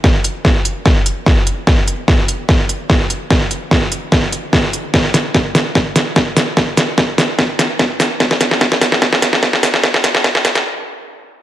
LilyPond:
\new DrumStaff \with { instrumentName = "Drums" } \drummode { \time 4/4 \tempo 4 = 147 <bd sn>8 hh8 <bd sn>8 hh8 <bd sn>8 hh8 <bd sn>8 hh8 | <bd sn>8 hh8 <bd sn>8 hh8 <bd sn>8 hh8 <bd sn>8 hh8 | <bd sn>8 hh8 <bd sn>8 hh8 <bd sn>8 hh8 <bd sn>8 hh8 | <bd sn>8 <hh sn>8 <bd sn>8 <hho sn>8 <bd sn>8 <hh sn>8 <bd sn>8 <hho sn>8 |
<bd sn>8 <hh sn>8 <bd sn>8 <hho sn>8 <bd sn>8 <hh sn>8 <bd sn>8 <hho sn>8 | <bd sn>16 sn16 <hh sn>16 sn16 <bd sn>16 sn16 <hho sn>16 sn16 <bd sn>16 sn16 <hh sn>16 sn16 <bd sn>16 sn16 <hho sn>16 sn16 | <bd sn>16 sn16 <hh sn>16 sn16 <bd sn>16 sn16 <hho sn>16 <hh sn>16 r4 r4 | }